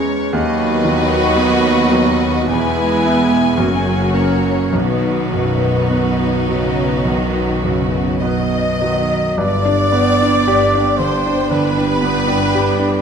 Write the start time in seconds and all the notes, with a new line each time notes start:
Already playing: E2 E3 G#3 C#4 C#5
0.33 D#2 F#3 B3 F#4 B4 D#5
0.84 D#3
1.37 B3
1.92 F#3
2.49 E1 E2 E3 G#3 B3 E4 B4 G#5
3.04 B3 E4
3.58 F#1 F#2 C#3 F#3 A#3 C#4 F#4
4.14 A#3 C#4 C#5
4.73 B1 B2 D#3 F#3 B3 D#4 F#4 B4
5.33 F#2
5.90 B2 B3
6.47 C#3 F#3
7.04 B1 D#3
7.62 F#2 C#3
8.21 B2 B3 D#5
8.81 D#3 F#3
9.37 G1 G2 D5
9.65 D4
9.92 B3 D4 G5
10.22 D4
10.46 G1 G2 G4
10.75 D4
10.98 D3 B3 D4 C5 G5
11.26 D4
11.51 G1 G2 D3 B4
11.77 D4
12.02 B3 D4 G5
12.28 D4
12.55 G1 G2 G4
12.79 D4